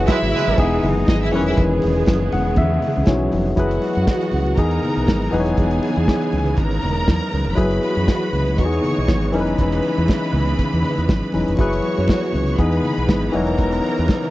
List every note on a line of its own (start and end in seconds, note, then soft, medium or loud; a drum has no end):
0.00 0.59 E3 medium
0.00 0.55 F#3 medium
0.00 3.55 G#3 medium
0.00 1.28 B3 medium
0.00 0.56 E4 medium
0.00 0.58 F#4 medium
0.00 0.57 G#4 medium
0.00 0.57 B4 medium
0.07 0.17 G#3 loud
0.07 0.79 E4 loud
0.07 0.17 E4 loud
0.07 0.17 B4 loud
0.07 0.79 E5 loud
0.07 kick loud
0.07 snare loud
0.07 closed hi-hat medium
0.07 high conga medium
0.22 0.31 G#1 medium
0.22 snare soft
0.32 0.66 G#3 medium
0.32 0.66 E4 loud
0.32 0.66 B4 loud
0.32 open hi-hat medium
0.32 muted conga soft
0.32 low conga medium
0.47 0.56 G#1 loud
0.57 0.79 E1 loud
0.57 1.31 E3 medium
0.57 1.33 B3 medium
0.57 1.33 D#4 medium
0.57 1.33 G#4 loud
0.57 3.56 G#4 medium
0.57 kick loud
0.57 closed hi-hat medium
0.83 1.03 F#1 loud
0.83 open hi-hat medium
0.83 low conga medium
1.07 1.33 G#1 loud
1.07 1.18 D#4 medium
1.07 1.19 D#5 loud
1.07 kick loud
1.07 snare loud
1.07 closed hi-hat medium
1.07 high conga medium
1.22 1.31 E4 medium
1.22 1.31 E5 loud
1.32 1.53 E1 loud
1.32 3.56 C#3 medium
1.32 3.05 D#3 medium
1.32 3.04 E3 medium
1.32 3.55 B3 medium
1.32 1.44 C#4 medium
1.32 3.05 C#4 medium
1.32 3.05 B4 medium
1.32 1.45 C#5 medium
1.32 open hi-hat medium
1.32 high conga medium
1.47 1.55 E4 medium
1.47 1.55 E5 medium
1.57 1.78 E1 loud
1.57 kick loud
1.57 closed hi-hat medium
1.57 muted conga medium
1.82 2.04 E1 medium
1.82 open hi-hat medium
1.82 muted conga medium
2.06 2.28 F#1 medium
2.06 kick loud
2.06 snare loud
2.06 closed hi-hat medium
2.06 high conga medium
2.32 2.53 E1 medium
2.32 2.56 F#5 medium
2.32 open hi-hat soft
2.32 muted conga soft
2.32 low conga medium
2.56 2.78 E2 loud
2.56 3.04 E5 medium
2.56 kick loud
2.56 closed hi-hat medium
2.56 muted conga soft
2.56 low conga medium
2.82 open hi-hat medium
2.82 low conga medium
2.97 3.06 C#2 loud
3.06 3.28 B1 medium
3.06 3.57 E3 medium
3.06 3.57 C#4 soft
3.06 3.58 D#4 soft
3.06 3.58 F#4 medium
3.06 3.54 C#5 medium
3.06 kick loud
3.06 snare loud
3.06 closed hi-hat medium
3.06 high conga medium
3.32 3.53 F1 medium
3.32 open hi-hat medium
3.32 high conga medium
3.56 3.78 F#1 medium
3.56 4.56 E3 medium
3.56 4.55 F#3 medium
3.56 4.56 G#3 medium
3.56 8.54 B3 medium
3.56 4.55 E4 medium
3.56 4.56 F#4 medium
3.56 4.56 G#4 medium
3.56 4.56 B4 medium
3.56 4.56 F#5 medium
3.56 kick medium
3.56 closed hi-hat medium
3.56 muted conga medium
3.71 closed hi-hat medium
3.82 open hi-hat medium
3.82 muted conga soft
3.95 4.06 F#2 medium
3.95 closed hi-hat medium
4.07 kick loud
4.07 snare loud
4.07 high conga medium
4.21 snare soft
4.21 closed hi-hat soft
4.32 4.53 C#2 loud
4.32 open hi-hat medium
4.32 muted conga soft
4.32 low conga medium
4.46 closed hi-hat soft
4.57 4.78 E2 medium
4.57 5.30 E3 medium
4.57 7.55 E3 medium
4.57 5.33 G#3 medium
4.57 5.31 B3 medium
4.57 5.32 D#4 medium
4.57 5.31 D#4 medium
4.57 5.33 G#4 medium
4.57 5.31 A#4 medium
4.57 5.31 A#5 medium
4.57 kick loud
4.57 closed hi-hat medium
4.57 muted conga soft
4.71 closed hi-hat soft
4.83 open hi-hat medium
4.83 low conga medium
4.97 5.06 B1 medium
4.97 closed hi-hat soft
5.08 5.29 G#1 medium
5.08 kick loud
5.08 snare loud
5.08 high conga medium
5.22 closed hi-hat soft
5.31 5.53 E1 medium
5.31 7.57 C#3 medium
5.31 7.28 E3 medium
5.31 14.30 G#3 medium
5.31 7.29 B3 medium
5.31 7.29 D#4 medium
5.31 6.55 G#4 medium
5.31 5.40 B4 medium
5.31 6.55 G#5 medium
5.31 open hi-hat medium
5.31 high conga medium
5.40 7.33 C#5 medium
5.46 closed hi-hat soft
5.57 5.78 E1 medium
5.57 kick loud
5.57 closed hi-hat medium
5.57 muted conga medium
5.71 closed hi-hat medium
5.83 open hi-hat medium
5.83 muted conga medium
5.96 6.06 E2 loud
5.96 closed hi-hat soft
6.08 kick medium
6.08 snare loud
6.08 high conga medium
6.21 closed hi-hat soft
6.32 6.53 C#2 loud
6.32 open hi-hat medium
6.32 muted conga soft
6.32 low conga medium
6.46 closed hi-hat soft
6.57 6.78 G#1 medium
6.57 7.56 A#4 medium
6.57 7.56 A#5 loud
6.57 kick loud
6.57 closed hi-hat medium
6.71 closed hi-hat soft
6.82 7.04 E1 medium
6.82 open hi-hat medium
6.82 low conga medium
6.96 closed hi-hat soft
7.08 7.20 E2 medium
7.08 kick loud
7.08 snare loud
7.08 high conga medium
7.21 closed hi-hat soft
7.31 7.45 C#2 medium
7.31 open hi-hat medium
7.31 high conga medium
7.45 7.56 F1 medium
7.45 closed hi-hat medium
7.55 7.78 F#1 loud
7.55 8.57 E3 medium
7.55 8.55 F#3 medium
7.55 8.55 E4 medium
7.55 8.57 F#4 medium
7.55 8.56 G#4 medium
7.55 8.55 B4 medium
7.55 8.56 B4 medium
7.55 8.55 B5 medium
7.55 kick loud
7.55 closed hi-hat medium
7.55 muted conga medium
7.71 closed hi-hat medium
7.83 open hi-hat medium
7.83 muted conga medium
7.95 8.06 F#2 medium
7.95 closed hi-hat soft
8.08 kick loud
8.08 snare loud
8.08 high conga medium
8.22 closed hi-hat soft
8.33 8.58 C#2 medium
8.33 open hi-hat medium
8.33 muted conga soft
8.33 low conga medium
8.47 closed hi-hat medium
8.57 8.79 E2 loud
8.57 9.31 E3 medium
8.57 11.55 E3 medium
8.57 11.56 B3 medium
8.57 9.33 B3 medium
8.57 9.33 D#4 medium
8.57 8.66 F#4 medium
8.57 9.32 C#5 medium
8.57 9.32 C#6 medium
8.57 kick medium
8.57 closed hi-hat medium
8.57 muted conga soft
8.65 9.37 G#4 medium
8.72 closed hi-hat soft
8.84 open hi-hat medium
8.84 low conga medium
8.97 9.07 B1 medium
8.97 closed hi-hat soft
9.08 9.34 G#1 medium
9.08 kick loud
9.08 snare loud
9.08 high conga medium
9.22 closed hi-hat soft
9.32 9.54 E1 medium
9.32 11.56 C#3 medium
9.32 11.29 E3 medium
9.32 11.30 C#4 medium
9.32 11.30 D#4 medium
9.32 9.41 A#4 medium
9.32 11.55 B4 medium
9.32 11.55 B5 medium
9.32 open hi-hat medium
9.32 high conga medium
9.41 11.33 B4 medium
9.47 closed hi-hat medium
9.58 9.79 E1 medium
9.58 kick medium
9.58 closed hi-hat medium
9.58 muted conga medium
9.72 closed hi-hat medium
9.83 open hi-hat soft
9.83 muted conga medium
9.97 10.07 E2 loud
9.97 closed hi-hat medium
10.08 kick loud
10.08 snare loud
10.08 high conga medium
10.23 snare soft
10.23 closed hi-hat soft
10.33 10.54 C#2 medium
10.33 open hi-hat soft
10.33 muted conga soft
10.33 low conga medium
10.48 closed hi-hat soft
10.57 kick medium
10.57 closed hi-hat medium
10.57 muted conga soft
10.57 low conga medium
10.72 10.82 E2 loud
10.72 closed hi-hat soft
10.83 open hi-hat medium
10.83 low conga medium
10.98 11.07 E2 medium
10.98 closed hi-hat medium
11.08 11.20 G#1 medium
11.08 kick loud
11.08 snare loud
11.08 high conga medium
11.23 closed hi-hat soft
11.32 11.46 E1 medium
11.32 11.59 E3 medium
11.32 11.59 C#4 medium
11.32 11.59 D#4 medium
11.32 11.59 B4 medium
11.32 open hi-hat medium
11.32 high conga medium
11.48 11.57 F1 medium
11.48 closed hi-hat soft
11.57 11.79 F#1 medium
11.57 12.57 E3 medium
11.57 12.56 F#3 medium
11.57 14.30 B3 medium
11.57 12.57 E4 medium
11.57 12.58 F#4 medium
11.57 12.57 G#4 medium
11.57 12.58 B4 medium
11.57 12.57 C#5 medium
11.57 12.57 C#6 medium
11.57 kick loud
11.57 closed hi-hat soft
11.57 muted conga medium
11.73 closed hi-hat medium
11.82 open hi-hat medium
11.82 muted conga soft
11.97 12.07 F#2 medium
11.97 closed hi-hat medium
12.08 kick loud
12.08 snare loud
12.08 high conga medium
12.23 snare soft
12.23 closed hi-hat soft
12.33 12.54 C#2 medium
12.33 open hi-hat medium
12.33 muted conga soft
12.33 low conga medium
12.48 closed hi-hat soft
12.58 12.79 E2 loud
12.58 14.30 E3 medium
12.58 13.31 E3 medium
12.58 13.32 B3 medium
12.58 13.33 D#4 medium
12.58 13.34 G#4 medium
12.58 13.32 B4 medium
12.58 13.32 B5 medium
12.58 kick medium
12.58 closed hi-hat medium
12.72 closed hi-hat medium
12.83 open hi-hat medium
12.83 low conga medium
12.98 13.07 B1 medium
12.98 closed hi-hat soft
13.09 13.29 G#1 medium
13.09 kick loud
13.09 snare loud
13.09 high conga medium
13.22 closed hi-hat soft
13.32 13.55 E1 medium
13.32 14.30 C#3 medium
13.32 14.30 E3 medium
13.32 14.30 B3 medium
13.32 14.30 D#4 medium
13.32 14.30 A#4 medium
13.32 14.30 C#5 medium
13.32 14.30 A#5 medium
13.32 open hi-hat medium
13.32 high conga medium
13.47 closed hi-hat medium
13.58 13.79 E1 medium
13.58 kick medium
13.58 closed hi-hat soft
13.58 muted conga medium
13.72 closed hi-hat medium
13.82 open hi-hat medium
13.82 muted conga soft
13.97 14.07 E2 loud
13.97 closed hi-hat medium
14.08 kick loud
14.08 snare loud
14.08 high conga medium
14.23 snare soft
14.23 closed hi-hat soft